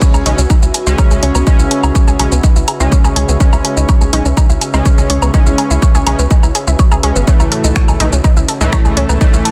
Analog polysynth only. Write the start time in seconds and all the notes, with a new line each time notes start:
Already playing: C#3 G#3 C#4
0.26 C#3 G#3 C#4
0.87 C#3 G#3 C#4
1.47 C#3 G#3 C#4
2.19 C#3 G#3 C#4
2.80 C#3 G#3 C#4
3.40 C#3 G#3 C#4
4.13 C#3 G#3 C#4
4.74 C#3 G#3 C#4
5.34 C#3 G#3 C#4
6.07 C#3 G#3 C#4
7.03 C#3 G#3 C#4
7.28 A2 E3 A3
8.00 A2 E3 A3
8.61 A2 E3 A3
9.21 A2 E3 A3